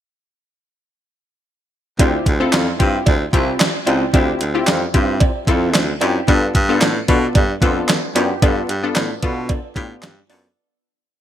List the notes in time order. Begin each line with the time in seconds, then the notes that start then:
1.99 D2 C4 E4 F4 G4, kick, closed hi-hat, cowbell
2.26 D2, kick, closed hi-hat
2.40 C4 E4 F4 A4
2.53 F2, snare, clap, closed hi-hat, cowbell
2.79 G2 C4 E4 F4 G4, kick, closed hi-hat
3.06 D2, kick, closed hi-hat, cowbell
3.33 C2 C4 E4 F4 G4, kick, closed hi-hat
3.60 snare, clap, closed hi-hat, cowbell
3.86 C#2 C4 E4 F4 G4, closed hi-hat, cowbell
4.13 D2 C4 E4 F4 G4, kick, closed hi-hat, cowbell
4.41 D2, closed hi-hat
4.54 C4 E4 F4 G4
4.67 F2, snare, clap, closed hi-hat, cowbell
4.94 G2 C4 E4 F4 G4, kick, closed hi-hat
5.20 kick, closed hi-hat, cowbell
5.47 F2 C4 E4 F4 A4, kick, closed hi-hat
5.74 D2, snare, clap, closed hi-hat, cowbell
6.01 F#2 C4 E4 F4 G4, closed hi-hat, cowbell
6.28 G2 B3 D4 F4 A4, kick, closed hi-hat, cowbell
6.55 G2, kick, closed hi-hat
6.69 B3 D4 F4 A4
6.81 A2, snare, clap, closed hi-hat, cowbell
7.08 B2 B3 D4 F4 A4, kick, closed hi-hat
7.35 G2, kick, closed hi-hat, cowbell
7.62 F2 B3 D4 F4 A4, kick, closed hi-hat
7.88 snare, clap, closed hi-hat, cowbell
8.15 F#2 B3 D4 F4 G4, closed hi-hat, cowbell
8.42 G2 B3 D4 F4 A4, kick, closed hi-hat, cowbell
8.69 G2, closed hi-hat
8.83 B3 D4 F4 A4
8.96 A2, snare, clap, closed hi-hat, cowbell
9.23 B2 B3 D4 F4 A4, kick, closed hi-hat
9.49 kick, closed hi-hat, cowbell
9.76 A2 B3 D4 F4 G4, kick, closed hi-hat
10.03 G2, snare, clap, closed hi-hat, cowbell
10.29 F#2 B3 D4 F4 A4, open hi-hat, cowbell